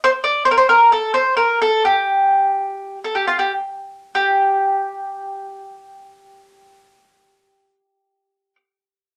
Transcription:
0.04 0.09 C5 loud
0.24 0.45 D5 medium
0.45 0.50 C5 medium
0.51 0.56 A#4 medium
0.58 0.68 C5 medium
0.69 0.90 A#4 medium
0.92 1.11 A4 medium
1.14 1.36 C5 medium
1.37 1.60 A#4 medium
1.62 1.83 A4 medium
1.85 2.98 G4 medium
3.04 3.15 A4 medium
3.15 3.26 G4 medium
3.27 3.38 F4 medium
3.39 3.51 G4 medium
4.15 8.55 G4 medium

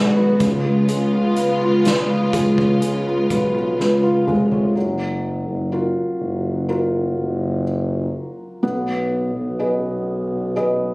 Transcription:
0.00 0.36 B1 medium
0.00 0.36 D#3 medium
0.00 0.36 G#3 medium
0.00 0.41 G#3 medium
0.00 0.37 B3 medium
0.00 0.42 D#4 medium
0.00 0.37 F#4 medium
0.00 0.16 B4 medium
0.16 0.39 B4 soft
0.40 0.85 C#2 loud
0.40 4.23 C#3 medium
0.40 4.72 C#3 medium
0.40 4.72 G#3 medium
0.40 4.72 B3 medium
0.40 4.71 F4 medium
0.40 kick loud
0.40 snare soft
0.40 closed hi-hat medium
0.65 2.32 G#3 soft
0.88 1.31 C#2 loud
0.88 2.78 G#4 medium
0.88 closed hi-hat medium
1.13 1.60 F4 medium
1.36 1.84 B4 medium
1.36 closed hi-hat medium
1.61 3.27 C#2 medium
1.61 2.08 F4 medium
1.85 3.29 B4 medium
1.85 snare loud
1.85 closed hi-hat medium
2.10 3.05 F4 soft
2.33 4.26 G#3 medium
2.33 kick medium
2.33 closed hi-hat medium
2.58 4.47 C#5 medium
2.58 kick medium
2.81 4.71 G#4 medium
2.81 closed hi-hat medium
3.07 3.53 F4 soft
3.30 3.75 B1 medium
3.30 3.78 B4 soft
3.30 kick medium
3.30 closed hi-hat medium
3.54 4.01 F4 soft
3.79 4.24 C#2 medium
3.79 4.73 B4 soft
3.79 snare soft
4.03 4.73 F4 medium
4.27 4.72 F1 medium
4.27 4.74 G#3 medium
4.27 mid tom medium
4.52 4.75 C#5 soft
4.52 floor tom medium
4.76 5.44 F#1 medium
4.76 8.59 F#3 medium
5.48 5.90 F#1 medium
5.72 6.66 F4 soft
5.72 6.66 F#4 soft
5.72 6.67 A#4 soft
6.21 7.13 F#1 medium
6.69 7.63 F4 soft
6.69 7.63 F#4 soft
6.69 7.63 A#4 soft
7.17 8.10 F#1 medium
8.63 9.31 B1 medium
8.63 10.94 B3 medium
9.36 10.94 B1 medium
9.59 10.53 G#4 soft
9.59 10.53 B4 soft
9.59 10.54 D#5 soft
10.56 10.94 G#4 soft
10.56 10.94 B4 soft
10.56 10.94 D#5 soft

